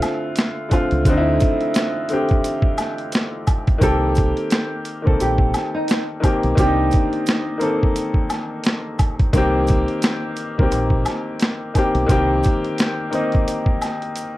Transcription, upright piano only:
0, 0, Header, 1, 2, 480
1, 0, Start_track
1, 0, Tempo, 689655
1, 735, Time_signature, 4, 2, 24, 8
1, 10006, End_track
2, 0, Start_track
2, 0, Title_t, "Upright piano"
2, 0, Program_c, 0, 0
2, 0, Control_c, 0, 64, 127
2, 0, Note_on_c, 0, 50, 90
2, 0, Note_on_c, 0, 57, 79
2, 0, Note_on_c, 0, 60, 82
2, 0, Note_on_c, 0, 64, 81
2, 0, Note_on_c, 0, 65, 96
2, 268, Note_off_c, 0, 50, 0
2, 274, Note_off_c, 0, 57, 0
2, 277, Note_off_c, 0, 60, 0
2, 307, Note_off_c, 0, 65, 0
2, 479, Note_on_c, 0, 50, 90
2, 488, Note_on_c, 0, 57, 81
2, 500, Note_on_c, 0, 60, 78
2, 510, Note_on_c, 0, 65, 93
2, 672, Note_off_c, 0, 50, 0
2, 677, Note_off_c, 0, 57, 0
2, 683, Note_off_c, 0, 60, 0
2, 688, Note_off_c, 0, 65, 0
2, 739, Note_on_c, 0, 50, 106
2, 750, Note_on_c, 0, 57, 102
2, 761, Note_on_c, 0, 60, 102
2, 770, Note_on_c, 0, 63, 95
2, 804, Note_off_c, 0, 63, 0
2, 818, Note_off_c, 0, 64, 0
2, 818, Note_on_c, 0, 64, 119
2, 1272, Note_off_c, 0, 50, 0
2, 1278, Note_off_c, 0, 57, 0
2, 1283, Note_off_c, 0, 60, 0
2, 1311, Note_off_c, 0, 64, 0
2, 1455, Note_on_c, 0, 50, 84
2, 1464, Note_on_c, 0, 57, 79
2, 1472, Note_on_c, 0, 60, 77
2, 1485, Note_on_c, 0, 67, 91
2, 2161, Note_off_c, 0, 50, 0
2, 2166, Note_off_c, 0, 57, 0
2, 2170, Note_off_c, 0, 60, 0
2, 2177, Note_off_c, 0, 67, 0
2, 2633, Note_on_c, 0, 51, 93
2, 2643, Note_on_c, 0, 58, 77
2, 2654, Note_on_c, 0, 60, 85
2, 2662, Control_c, 0, 64, 0
2, 2664, Note_on_c, 0, 67, 108
2, 2786, Control_c, 0, 64, 127
2, 3275, Note_off_c, 0, 51, 0
2, 3280, Note_off_c, 0, 58, 0
2, 3285, Note_off_c, 0, 60, 0
2, 3291, Note_off_c, 0, 67, 0
2, 3495, Note_on_c, 0, 51, 74
2, 3508, Note_on_c, 0, 58, 60
2, 3518, Note_on_c, 0, 60, 64
2, 3528, Note_on_c, 0, 69, 80
2, 4105, Note_off_c, 0, 51, 0
2, 4111, Note_off_c, 0, 58, 0
2, 4116, Note_off_c, 0, 60, 0
2, 4121, Note_off_c, 0, 69, 0
2, 4316, Note_on_c, 0, 51, 89
2, 4329, Note_on_c, 0, 58, 85
2, 4338, Note_on_c, 0, 60, 79
2, 4349, Note_on_c, 0, 67, 92
2, 4511, Note_off_c, 0, 51, 0
2, 4517, Note_off_c, 0, 58, 0
2, 4522, Note_off_c, 0, 60, 0
2, 4527, Note_off_c, 0, 67, 0
2, 4560, Note_on_c, 0, 51, 100
2, 4575, Note_on_c, 0, 58, 86
2, 4582, Note_on_c, 0, 60, 84
2, 4595, Note_on_c, 0, 62, 86
2, 4637, Note_off_c, 0, 62, 0
2, 4639, Note_on_c, 0, 63, 108
2, 5103, Note_off_c, 0, 51, 0
2, 5110, Note_off_c, 0, 58, 0
2, 5114, Note_off_c, 0, 60, 0
2, 5142, Note_off_c, 0, 63, 0
2, 5275, Note_on_c, 0, 51, 85
2, 5286, Note_on_c, 0, 58, 84
2, 5296, Note_on_c, 0, 60, 74
2, 5309, Note_on_c, 0, 69, 88
2, 5991, Note_off_c, 0, 51, 0
2, 5997, Note_off_c, 0, 58, 0
2, 6002, Note_off_c, 0, 60, 0
2, 6008, Note_off_c, 0, 69, 0
2, 6494, Note_on_c, 0, 51, 110
2, 6502, Note_on_c, 0, 58, 110
2, 6514, Note_on_c, 0, 60, 113
2, 6526, Note_on_c, 0, 67, 127
2, 7126, Note_off_c, 0, 51, 0
2, 7130, Note_off_c, 0, 58, 0
2, 7136, Note_off_c, 0, 60, 0
2, 7142, Note_off_c, 0, 67, 0
2, 7363, Note_on_c, 0, 51, 83
2, 7373, Note_on_c, 0, 58, 79
2, 7382, Note_on_c, 0, 60, 84
2, 7396, Note_on_c, 0, 67, 86
2, 7959, Note_off_c, 0, 51, 0
2, 7964, Note_off_c, 0, 58, 0
2, 7968, Note_off_c, 0, 60, 0
2, 7975, Note_off_c, 0, 67, 0
2, 8171, Note_on_c, 0, 51, 80
2, 8180, Note_on_c, 0, 58, 80
2, 8192, Note_on_c, 0, 60, 80
2, 8202, Note_on_c, 0, 67, 100
2, 8358, Note_off_c, 0, 51, 0
2, 8363, Note_off_c, 0, 58, 0
2, 8369, Note_off_c, 0, 60, 0
2, 8374, Note_off_c, 0, 67, 0
2, 8397, Note_on_c, 0, 51, 112
2, 8407, Note_on_c, 0, 58, 99
2, 8420, Note_on_c, 0, 60, 99
2, 8431, Note_on_c, 0, 67, 127
2, 8941, Note_off_c, 0, 51, 0
2, 8946, Note_off_c, 0, 58, 0
2, 8953, Note_off_c, 0, 60, 0
2, 8958, Note_off_c, 0, 67, 0
2, 9121, Note_on_c, 0, 51, 77
2, 9127, Note_on_c, 0, 58, 82
2, 9141, Note_on_c, 0, 60, 84
2, 9150, Note_on_c, 0, 63, 92
2, 9834, Note_off_c, 0, 51, 0
2, 9837, Note_off_c, 0, 58, 0
2, 9844, Note_off_c, 0, 60, 0
2, 9849, Note_off_c, 0, 63, 0
2, 10006, End_track
0, 0, End_of_file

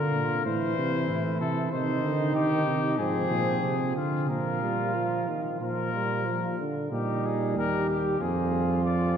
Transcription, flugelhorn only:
0, 0, Header, 1, 2, 480
1, 0, Start_track
1, 0, Key_signature, -3, "major"
1, 0, Tempo, 632244
1, 1314, Time_signature, 4, 2, 24, 8
1, 2270, Tempo, 655022
1, 5150, Tempo, 642398
1, 6833, End_track
2, 0, Start_track
2, 0, Title_t, "Flugelhorn"
2, 0, Program_c, 0, 56
2, 0, Note_on_c, 0, 65, 61
2, 341, Note_off_c, 0, 65, 0
2, 345, Note_on_c, 0, 64, 65
2, 1291, Note_off_c, 0, 64, 0
2, 1316, Note_on_c, 0, 63, 80
2, 2253, Note_off_c, 0, 63, 0
2, 2266, Note_on_c, 0, 60, 73
2, 2997, Note_off_c, 0, 60, 0
2, 3215, Note_on_c, 0, 65, 74
2, 4154, Note_off_c, 0, 65, 0
2, 4182, Note_on_c, 0, 65, 61
2, 4893, Note_off_c, 0, 65, 0
2, 5147, Note_on_c, 0, 63, 69
2, 5603, Note_off_c, 0, 63, 0
2, 5638, Note_on_c, 0, 67, 68
2, 6104, Note_off_c, 0, 67, 0
2, 6108, Note_on_c, 0, 65, 71
2, 6833, Note_off_c, 0, 65, 0
2, 6833, End_track
0, 0, End_of_file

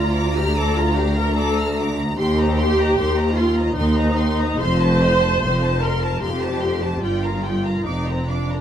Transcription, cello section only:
0, 0, Header, 1, 2, 480
1, 0, Start_track
1, 0, Key_signature, -2, "major"
1, 0, Tempo, 798935
1, 1311, Time_signature, 3, 2, 24, 8
1, 2260, Tempo, 847458
1, 2740, Tempo, 806452
1, 4180, Tempo, 852273
1, 5070, End_track
2, 0, Start_track
2, 0, Title_t, "Cello section"
2, 0, Program_c, 0, 48
2, 0, Note_on_c, 0, 38, 70
2, 1289, Note_off_c, 0, 38, 0
2, 1316, Note_on_c, 0, 39, 83
2, 1732, Note_off_c, 0, 39, 0
2, 1790, Note_on_c, 0, 39, 75
2, 2205, Note_off_c, 0, 39, 0
2, 2262, Note_on_c, 0, 39, 70
2, 2684, Note_off_c, 0, 39, 0
2, 2741, Note_on_c, 0, 41, 73
2, 3167, Note_off_c, 0, 41, 0
2, 3224, Note_on_c, 0, 41, 63
2, 3645, Note_off_c, 0, 41, 0
2, 3703, Note_on_c, 0, 41, 64
2, 4124, Note_off_c, 0, 41, 0
2, 4179, Note_on_c, 0, 43, 61
2, 4591, Note_off_c, 0, 43, 0
2, 4647, Note_on_c, 0, 41, 47
2, 5070, Note_off_c, 0, 41, 0
2, 5070, End_track
0, 0, End_of_file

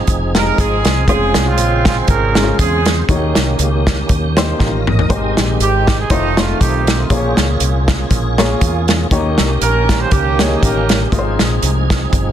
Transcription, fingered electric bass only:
0, 0, Header, 1, 2, 480
1, 0, Start_track
1, 0, Tempo, 502092
1, 1033, Time_signature, 4, 2, 24, 8
1, 11779, End_track
2, 0, Start_track
2, 0, Title_t, "Fingered electric bass"
2, 0, Program_c, 0, 33
2, 73, Note_on_c, 0, 29, 84
2, 481, Note_off_c, 0, 29, 0
2, 558, Note_on_c, 0, 32, 83
2, 781, Note_off_c, 0, 32, 0
2, 813, Note_on_c, 0, 36, 84
2, 999, Note_off_c, 0, 36, 0
2, 1029, Note_on_c, 0, 29, 97
2, 1255, Note_off_c, 0, 29, 0
2, 1294, Note_on_c, 0, 36, 75
2, 1514, Note_off_c, 0, 36, 0
2, 1514, Note_on_c, 0, 34, 82
2, 1921, Note_off_c, 0, 34, 0
2, 1989, Note_on_c, 0, 32, 80
2, 2399, Note_off_c, 0, 32, 0
2, 2476, Note_on_c, 0, 40, 80
2, 2883, Note_off_c, 0, 40, 0
2, 2950, Note_on_c, 0, 39, 91
2, 3176, Note_off_c, 0, 39, 0
2, 3219, Note_on_c, 0, 36, 79
2, 3402, Note_off_c, 0, 36, 0
2, 3434, Note_on_c, 0, 37, 85
2, 3842, Note_off_c, 0, 37, 0
2, 3914, Note_on_c, 0, 39, 74
2, 4322, Note_off_c, 0, 39, 0
2, 4400, Note_on_c, 0, 33, 81
2, 4806, Note_off_c, 0, 33, 0
2, 4875, Note_on_c, 0, 32, 87
2, 5099, Note_off_c, 0, 32, 0
2, 5140, Note_on_c, 0, 34, 87
2, 5323, Note_off_c, 0, 34, 0
2, 5351, Note_on_c, 0, 32, 82
2, 5761, Note_off_c, 0, 32, 0
2, 5832, Note_on_c, 0, 29, 91
2, 6241, Note_off_c, 0, 29, 0
2, 6320, Note_on_c, 0, 35, 73
2, 6726, Note_off_c, 0, 35, 0
2, 6790, Note_on_c, 0, 34, 94
2, 7017, Note_off_c, 0, 34, 0
2, 7052, Note_on_c, 0, 37, 87
2, 7239, Note_off_c, 0, 37, 0
2, 7269, Note_on_c, 0, 36, 83
2, 7680, Note_off_c, 0, 36, 0
2, 7751, Note_on_c, 0, 34, 90
2, 8161, Note_off_c, 0, 34, 0
2, 8235, Note_on_c, 0, 40, 81
2, 8643, Note_off_c, 0, 40, 0
2, 8710, Note_on_c, 0, 39, 91
2, 8936, Note_off_c, 0, 39, 0
2, 8978, Note_on_c, 0, 36, 81
2, 9161, Note_off_c, 0, 36, 0
2, 9189, Note_on_c, 0, 34, 83
2, 9599, Note_off_c, 0, 34, 0
2, 9673, Note_on_c, 0, 37, 83
2, 10081, Note_off_c, 0, 37, 0
2, 10159, Note_on_c, 0, 33, 84
2, 10564, Note_off_c, 0, 33, 0
2, 10632, Note_on_c, 0, 32, 86
2, 10857, Note_off_c, 0, 32, 0
2, 10898, Note_on_c, 0, 34, 81
2, 11081, Note_off_c, 0, 34, 0
2, 11116, Note_on_c, 0, 36, 85
2, 11522, Note_off_c, 0, 36, 0
2, 11594, Note_on_c, 0, 31, 89
2, 11779, Note_off_c, 0, 31, 0
2, 11779, End_track
0, 0, End_of_file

